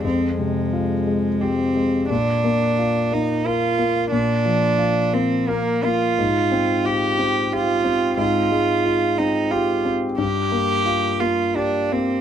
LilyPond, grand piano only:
\new Staff \with { instrumentName = "Grand piano" } { \time 3/4 \key f \dorian \tempo 4 = 89 <f, aes>8 c8 f'8 aes8 g'8 aes8 | bes,8 bes8 f'8 bes8 bes'8 bes8 | bes,8 f8 f'8 bes8 bes'8 bes8 | aes,8 c'8 f'8 c'8 g'8 c'8 |
aes,8 aes8 f'8 c'8 g'8 c'8 | g,8 bes8 f'8 bes8 g'8 bes8 | }